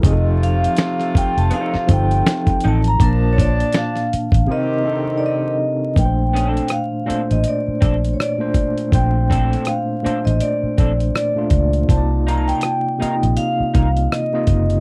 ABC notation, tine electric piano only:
X:1
M:4/4
L:1/16
Q:"Swing 16ths" 1/4=81
K:Bb
V:1 name="Tine electric piano"
[F,CE_A=A]6 z4 [F,CEA]4- [F,CEA] z | [B,,B,Da]6 z2 [C,CEB]2 [C,CDEA]4- [C,CDEA] z | [B,,A,D=Bc]4- [_B,,A,D=Bc] z [_B,,A,Dc]4- [B,,A,Dc] z2 [B,,A,Dc]2 z | [B,,A,CDc]4- [B,,A,CDc] z [B,,A,Dc]4- [B,,A,Dc] z2 [B,,A,DF]2 z |
[C,B,EFcd]4- [C,B,EFcd] z [C,B,EFe]4- [C,B,EFe] z2 [C,B,EFe]2 z |]